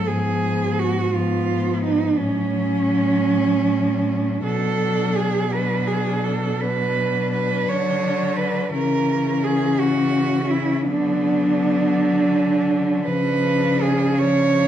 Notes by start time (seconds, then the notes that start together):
0.05 G#2 F3 B3 G#4
0.79 F#4
1.12 F3 B3 F4
1.84 D#4
2.18 A2 F#3 C#4
4.43 B2 F#3 D4 A4
5.16 G#4
5.52 F#3 D4 B4
5.87 G#4
6.24 A4
6.60 F#3 D4 B4
7.33 B4
7.68 D3 C#5
8.37 B4
8.72 C#3 E3 C#4 A#4
9.44 G#4
9.80 F#4
10.51 E4
10.84 D3 F#3 B3 D4
12.29 C#4
13.05 C#3 F3 D4 B4
13.82 G#4
14.19 F3 D4 C#5